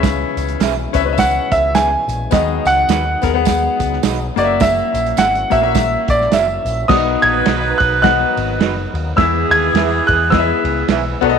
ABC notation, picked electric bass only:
X:1
M:4/4
L:1/8
Q:"Swing" 1/4=105
K:B
V:1 name="Picked electric bass" clef=bass
C,, C,, B,,, C,,2 C,,2 A,,, | D,, C,, D,, D,,2 C,, B,,, F,,,- | F,,, A,,, G,,, A,,,2 A,,, z A,,, | B,,, A,,, B,,, B,,,2 G,,, F,,, D,, |
E,, D,, E,, E,,2 C,, B,,, B,,, |]